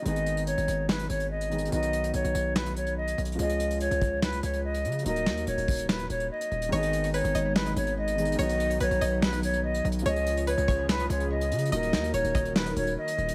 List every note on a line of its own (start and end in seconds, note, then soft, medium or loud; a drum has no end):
0.02 0.56 G#1 loud
0.02 1.47 D#3 medium
0.02 1.48 G#3 medium
0.02 1.48 B3 medium
0.02 0.45 D#5 medium
0.02 closed hi-hat medium
0.07 1.49 D#4 medium
0.07 1.50 G#4 medium
0.16 closed hi-hat medium
0.26 closed hi-hat medium
0.37 closed hi-hat medium
0.47 0.86 C#5 medium
0.47 closed hi-hat medium
0.58 0.67 G#1 loud
0.58 closed hi-hat medium
0.68 1.08 G#1 loud
0.68 closed hi-hat medium
0.89 1.08 B4 medium
0.89 snare loud
0.99 closed hi-hat medium
1.09 1.70 G#1 loud
1.09 1.29 C#5 medium
1.09 closed hi-hat medium
1.20 closed hi-hat soft
1.30 1.70 D#5 medium
1.41 closed hi-hat medium
1.50 1.67 D#3 medium
1.50 1.72 G#3 soft
1.50 1.71 B3 soft
1.50 1.72 D#4 soft
1.50 1.73 G#4 medium
1.50 closed hi-hat medium
1.58 closed hi-hat medium
1.65 3.34 D#3 medium
1.65 closed hi-hat medium
1.70 2.12 B1 loud
1.70 3.35 F#3 medium
1.70 3.36 B3 medium
1.70 3.36 D#4 medium
1.70 2.11 D#5 loud
1.70 closed hi-hat medium
1.76 3.37 F#4 medium
1.83 closed hi-hat medium
1.93 closed hi-hat medium
2.04 closed hi-hat medium
2.14 2.24 B1 loud
2.14 2.53 C#5 medium
2.14 closed hi-hat medium
2.24 2.34 B1 loud
2.24 closed hi-hat medium
2.35 3.15 B1 loud
2.35 closed hi-hat medium
2.56 2.75 B4 medium
2.56 snare loud
2.66 closed hi-hat medium
2.76 2.96 C#5 medium
2.76 closed hi-hat medium
2.87 closed hi-hat soft
2.97 3.20 D#5 medium
3.08 closed hi-hat medium
3.18 3.38 B1 loud
3.18 closed hi-hat medium
3.25 closed hi-hat medium
3.32 5.00 F3 medium
3.32 closed hi-hat medium
3.37 3.89 C#2 loud
3.37 5.01 G#3 medium
3.37 5.02 C#4 medium
3.37 5.03 F4 medium
3.37 3.78 D#5 medium
3.37 closed hi-hat medium
3.42 5.04 G#4 medium
3.49 closed hi-hat medium
3.60 closed hi-hat medium
3.71 closed hi-hat medium
3.80 4.20 C#5 medium
3.80 closed hi-hat medium
3.91 4.41 C#2 loud
3.91 closed hi-hat medium
4.01 kick medium
4.01 closed hi-hat medium
4.22 4.42 B4 medium
4.22 snare loud
4.33 closed hi-hat medium
4.43 4.86 C#2 loud
4.43 4.63 C#5 medium
4.43 closed hi-hat medium
4.53 closed hi-hat soft
4.64 5.03 D#5 medium
4.74 closed hi-hat medium
4.85 5.05 C#3 loud
4.85 closed hi-hat medium
4.92 closed hi-hat medium
4.99 6.67 F#3 medium
4.99 closed hi-hat medium
5.04 5.28 D#1 loud
5.04 6.68 A#3 medium
5.04 6.69 D#4 medium
5.04 6.70 F#4 medium
5.04 5.45 D#5 loud
5.04 closed hi-hat medium
5.09 6.71 A#4 medium
5.16 closed hi-hat medium
5.26 5.46 D#2 loud
5.26 snare medium
5.37 closed hi-hat medium
5.47 5.57 D#1 loud
5.47 5.86 C#5 medium
5.47 closed hi-hat medium
5.58 6.08 D#1 loud
5.58 closed hi-hat medium
5.68 kick medium
5.68 closed hi-hat medium
5.68 open hi-hat medium
5.79 closed hi-hat medium
5.89 6.09 B4 medium
5.89 snare loud
5.99 closed hi-hat medium
6.10 6.30 D#1 loud
6.10 6.29 C#5 medium
6.10 closed hi-hat medium
6.20 closed hi-hat soft
6.31 6.70 D#5 medium
6.41 closed hi-hat medium
6.51 6.71 D#1 loud
6.51 closed hi-hat soft
6.62 closed hi-hat medium
6.69 7.22 G#1 loud
6.69 8.13 D#3 medium
6.69 8.14 G#3 medium
6.69 8.37 G#3 medium
6.69 8.15 B3 medium
6.69 10.02 B3 medium
6.69 10.02 D#4 medium
6.69 7.12 C#5 loud
6.69 7.12 D#5 loud
6.69 closed hi-hat medium
6.74 8.16 D#4 medium
6.74 8.17 G#4 medium
6.83 closed hi-hat medium
6.93 closed hi-hat medium
7.04 closed hi-hat medium
7.13 7.34 B4 medium
7.13 7.53 C#5 medium
7.13 closed hi-hat medium
7.24 7.34 G#1 loud
7.24 closed hi-hat medium
7.35 7.75 G#1 loud
7.35 7.55 D#5 medium
7.35 closed hi-hat medium
7.56 7.75 B4 medium
7.56 snare loud
7.66 closed hi-hat medium
7.76 8.36 G#1 loud
7.76 7.96 C#5 medium
7.76 closed hi-hat medium
7.87 closed hi-hat soft
7.97 8.37 D#5 medium
8.08 closed hi-hat medium
8.16 8.34 D#3 medium
8.16 8.39 G#3 soft
8.16 8.38 B3 soft
8.16 8.39 D#4 soft
8.16 8.40 G#4 medium
8.16 closed hi-hat medium
8.25 closed hi-hat medium
8.32 10.00 D#3 medium
8.32 closed hi-hat medium
8.37 8.79 B1 loud
8.37 10.01 F#3 medium
8.37 10.04 F#3 medium
8.37 10.02 B3 medium
8.37 10.03 D#4 medium
8.37 8.78 C#5 loud
8.37 8.78 D#5 loud
8.37 closed hi-hat medium
8.43 10.04 F#4 medium
8.49 closed hi-hat medium
8.60 closed hi-hat medium
8.71 closed hi-hat medium
8.80 8.90 B1 loud
8.80 9.00 B4 medium
8.80 9.20 C#5 medium
8.80 closed hi-hat medium
8.91 9.01 B1 loud
8.91 closed hi-hat medium
9.01 9.81 B1 loud
9.01 9.21 D#5 medium
9.01 closed hi-hat medium
9.22 9.42 B4 medium
9.22 snare loud
9.33 closed hi-hat medium
9.43 9.63 C#5 medium
9.43 closed hi-hat medium
9.54 closed hi-hat soft
9.64 9.87 D#5 medium
9.74 closed hi-hat medium
9.85 10.05 B1 loud
9.85 closed hi-hat medium
9.92 closed hi-hat medium
9.99 11.67 F3 medium
9.99 closed hi-hat medium
10.04 10.56 C#2 loud
10.04 11.71 C#3 medium
10.04 11.68 G#3 medium
10.04 11.69 C#4 medium
10.04 11.71 C#4 medium
10.04 11.71 F4 medium
10.04 11.70 F4 medium
10.04 11.71 G#4 medium
10.04 10.45 C#5 loud
10.04 10.45 D#5 loud
10.04 closed hi-hat medium
10.09 11.71 G#4 medium
10.16 closed hi-hat medium
10.27 closed hi-hat medium
10.37 closed hi-hat medium
10.47 10.67 B4 medium
10.47 10.86 C#5 medium
10.47 closed hi-hat medium
10.58 11.08 C#2 loud
10.58 closed hi-hat medium
10.68 10.88 C#5 medium
10.68 kick medium
10.68 closed hi-hat medium
10.89 11.08 B4 medium
10.89 snare loud
10.99 closed hi-hat medium
11.10 11.53 C#2 loud
11.10 11.29 C#5 medium
11.10 closed hi-hat medium
11.20 closed hi-hat soft
11.31 11.70 D#5 medium
11.41 closed hi-hat medium
11.51 11.71 C#3 loud
11.51 closed hi-hat medium
11.59 closed hi-hat medium
11.65 13.34 F#3 medium
11.65 closed hi-hat medium
11.71 11.95 D#1 loud
11.71 13.35 D#3 medium
11.71 13.35 A#3 medium
11.71 13.35 D#4 medium
11.71 13.35 F#4 medium
11.71 13.35 A#4 medium
11.71 12.11 D#5 loud
11.71 12.12 D#5 loud
11.71 closed hi-hat medium
11.76 13.35 A#4 medium
11.83 closed hi-hat medium
11.93 12.13 D#2 loud
11.93 snare loud
12.04 closed hi-hat medium
12.14 12.24 D#1 loud
12.14 12.53 C#5 medium
12.14 12.34 C#5 medium
12.14 closed hi-hat medium
12.24 12.74 D#1 loud
12.24 closed hi-hat medium
12.35 12.55 D#5 medium
12.35 kick medium
12.35 closed hi-hat medium
12.35 open hi-hat loud
12.45 closed hi-hat medium
12.56 12.75 B4 medium
12.56 snare loud
12.66 closed hi-hat medium
12.76 12.96 D#1 loud
12.76 12.96 C#5 medium
12.76 closed hi-hat medium
12.87 closed hi-hat soft
12.97 13.35 D#5 medium
13.08 closed hi-hat medium
13.18 13.35 D#1 loud
13.18 closed hi-hat soft
13.29 closed hi-hat medium